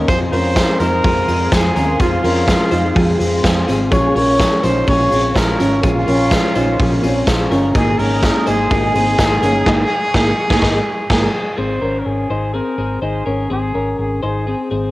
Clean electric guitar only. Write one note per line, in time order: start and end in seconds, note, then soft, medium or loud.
0.09 0.33 C4 medium
0.09 0.33 G#4 loud
0.32 0.78 C#4 medium
0.32 0.77 A#4 medium
0.80 1.04 D#4 medium
0.80 1.04 C5 medium
1.04 1.27 C4 medium
1.04 1.27 G#4 medium
1.28 1.52 C4 medium
1.28 1.52 G#4 medium
1.52 1.77 F4 medium
1.52 1.75 C5 medium
1.76 2.00 C#4 medium
1.76 2.00 A#4 medium
2.00 2.24 C4 medium
2.00 2.24 G#4 loud
2.24 2.69 C#4 medium
2.24 2.69 A#4 medium
2.71 2.96 D#4 medium
2.71 2.96 C5 medium
2.96 3.19 C4 medium
2.96 3.18 G#4 medium
3.20 3.44 C4 medium
3.20 3.44 G#4 medium
3.44 3.67 F4 medium
3.44 3.68 C5 medium
3.67 3.91 C4 medium
3.67 3.90 G#4 medium
3.91 4.15 C#4 medium
3.91 4.15 G#4 loud
4.15 4.61 C#4 medium
4.15 4.60 A#4 medium
4.63 4.87 D#4 medium
4.63 4.87 C5 medium
4.87 5.11 C#4 medium
4.87 5.10 G#4 medium
5.11 5.36 C4 medium
5.11 5.35 G#4 medium
5.35 5.59 F4 medium
5.35 5.59 C5 medium
5.59 5.82 C#4 medium
5.59 5.83 A#4 medium
5.83 6.06 C#4 medium
5.83 6.07 G#4 loud
6.07 6.52 C#4 medium
6.07 6.52 A#4 medium
6.55 6.79 D#4 medium
6.55 6.79 C5 medium
6.79 7.03 C#4 medium
6.79 7.02 G#4 medium
7.03 7.27 C4 medium
7.03 7.27 G#4 medium
7.27 7.51 F4 medium
7.27 7.51 C5 medium
7.51 7.75 C#4 medium
7.51 7.75 A#4 medium
7.76 7.99 D#4 medium
7.76 7.99 G#4 loud
7.99 8.44 C#4 medium
7.99 8.44 A#4 medium
8.47 8.70 D#4 medium
8.47 8.70 C5 medium
8.71 8.95 D#4 medium
8.71 8.93 G#4 medium
8.94 9.19 C4 medium
8.94 9.18 G#4 medium
9.19 9.43 D#4 medium
9.19 9.42 C5 medium
9.42 9.66 C#4 medium
9.42 9.66 A#4 medium
9.66 9.83 D#4 loud
9.66 9.82 G#4 loud
10.50 10.61 D#4 medium
10.50 10.60 G#4 medium
10.62 10.79 D#4 medium
10.62 10.78 G#4 loud
11.58 11.82 C4 medium
11.58 11.81 G#4 medium
11.81 12.27 C#4 medium
11.81 12.27 A#4 medium
12.30 12.54 D#4 medium
12.30 12.53 C5 medium
12.54 12.77 C4 medium
12.54 12.77 G#4 medium
12.78 13.02 C4 soft
12.78 13.02 G#4 medium
13.02 13.26 D#4 soft
13.02 13.26 C5 medium
13.26 13.51 C#4 medium
13.26 13.50 A#4 medium
13.50 13.75 C4 medium
13.50 13.74 G#4 medium
13.74 14.20 C#4 soft
13.74 14.20 A#4 medium
14.23 14.47 D#4 medium
14.23 14.47 C5 medium
14.47 14.71 C4 soft
14.47 14.70 G#4 medium
14.71 14.91 C4 medium
14.71 14.91 G#4 medium